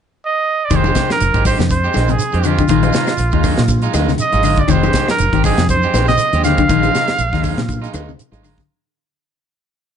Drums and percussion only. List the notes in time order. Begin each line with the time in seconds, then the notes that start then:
0.70 kick, closed hi-hat, claves, shekere
0.84 high conga, shekere
0.95 kick, snare, closed hi-hat, shekere
1.09 snare, high conga, claves, shekere
1.20 closed hi-hat, shekere
1.34 kick, closed hi-hat, shekere
1.45 kick, open hi-hat, high conga, claves, shekere
1.59 snare, closed hi-hat, shekere
1.69 kick, closed hi-hat, shekere
1.84 shekere
1.93 snare, closed hi-hat, high conga, claves, shekere
2.08 closed hi-hat, shekere
2.19 closed hi-hat, shekere
2.32 closed hi-hat, high conga, shekere
2.43 closed hi-hat, claves, shekere
2.58 kick, closed hi-hat, shekere
2.68 kick, closed hi-hat, claves, shekere
2.83 closed hi-hat, high conga, shekere
2.93 snare, closed hi-hat, shekere
3.07 snare, closed hi-hat, claves, shekere
3.17 closed hi-hat, shekere
3.32 kick, shekere
3.43 kick, open hi-hat, high conga, claves, shekere
3.57 snare, closed hi-hat, shekere
3.68 kick, closed hi-hat, high conga, shekere
3.82 closed hi-hat, shekere
3.94 snare, closed hi-hat, high conga, claves, shekere
4.08 snare, shekere
4.18 closed hi-hat, shekere
4.33 closed hi-hat, high conga, shekere
4.43 open hi-hat, claves, shekere
4.56 kick, closed hi-hat, shekere
4.68 kick, closed hi-hat, claves, shekere
4.83 high conga, shekere
4.93 kick, snare, closed hi-hat, shekere
5.08 snare, high conga, claves, shekere
5.18 closed hi-hat, shekere
5.33 kick, closed hi-hat, shekere
5.44 kick, open hi-hat, high conga, claves, shekere
5.57 snare, closed hi-hat, shekere
5.69 kick, closed hi-hat, high conga, shekere
5.83 shekere
5.94 snare, closed hi-hat, high conga, claves, shekere
6.08 snare, closed hi-hat, shekere
6.17 closed hi-hat, shekere
6.33 closed hi-hat, high conga, shekere
6.44 snare, closed hi-hat, claves, shekere
6.58 kick, closed hi-hat, high conga, shekere
6.69 kick, closed hi-hat, claves, shekere
6.83 closed hi-hat, high conga, shekere
6.95 snare, closed hi-hat, shekere
7.07 snare, closed hi-hat, high conga, claves, shekere
7.18 closed hi-hat, shekere
7.33 kick, snare, shekere
7.43 kick, open hi-hat, high conga, claves, shekere
7.57 snare, closed hi-hat, shekere
7.68 kick, closed hi-hat, high conga, shekere
7.84 closed hi-hat, shekere
7.94 closed hi-hat, high conga, claves, shekere
8.08 shekere
8.19 closed hi-hat, shekere
8.32 closed hi-hat, high conga, shekere
8.44 open hi-hat, claves, shekere
8.58 kick, snare, closed hi-hat, shekere